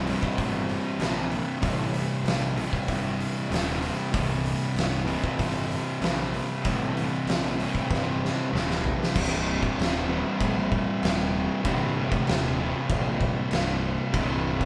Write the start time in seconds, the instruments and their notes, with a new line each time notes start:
Already playing: picked electric bass C1
0.06 distorted electric guitar C2 G2 C3, open hi-hat
0.23 kick
0.38 picked electric bass G1, kick, open hi-hat
0.69 open hi-hat
0.99 picked electric bass A#1, distorted electric guitar C2 G2 C3, snare, open hi-hat
1.31 open hi-hat
1.60 picked electric bass A1, distorted electric guitar C2 G2, kick, open hi-hat
1.65 distorted electric guitar C3
1.94 open hi-hat
2.24 picked electric bass A#1, open hi-hat
2.28 snare
2.57 distorted electric guitar C2 G2 C3, open hi-hat
2.73 kick
2.88 picked electric bass G1, kick, open hi-hat
3.20 open hi-hat
3.48 picked electric bass D#1, distorted electric guitar C2 G2, open hi-hat
3.53 distorted electric guitar C3, snare
3.82 open hi-hat
4.12 picked electric bass C1, distorted electric guitar C2 G2 C3, kick, open hi-hat
4.46 open hi-hat
4.76 picked electric bass C1, snare, open hi-hat
5.06 distorted electric guitar C2 G2 C3, open hi-hat
5.24 kick
5.39 picked electric bass G1, kick, open hi-hat
5.71 open hi-hat
6.01 picked electric bass A#1, distorted electric guitar C2 G2 C3, snare, open hi-hat
6.34 open hi-hat
6.62 picked electric bass A1, distorted electric guitar C2 G2, kick, open hi-hat
6.66 distorted electric guitar C3
6.97 open hi-hat
7.26 picked electric bass A#1, snare, open hi-hat
7.58 distorted electric guitar C2 G2 C3, open hi-hat
7.75 kick
7.90 picked electric bass G1, kick, snare
8.25 snare
8.51 picked electric bass D#1, distorted electric guitar C2 G2 C3
8.56 snare
8.71 snare
8.84 floor tom
9.03 snare
9.14 picked electric bass C1, distorted electric guitar C2 G2 C3, kick, crash
9.63 kick
9.78 picked electric bass D#1, snare, crash
10.07 distorted electric guitar C2 G2 C3
10.40 picked electric bass A#1, kick, crash
10.72 kick
11.03 picked electric bass D#1, snare, crash
11.63 picked electric bass G1, distorted electric guitar C2 G2 C3, kick, crash
12.12 kick
12.27 picked electric bass D#1, snare, crash
12.56 distorted electric guitar C2 G2 C3
12.89 picked electric bass A#1, kick, crash
13.21 kick
13.51 picked electric bass C1, snare, crash
14.12 picked electric bass C1, distorted electric guitar C2 G2 C3, kick, crash
14.61 kick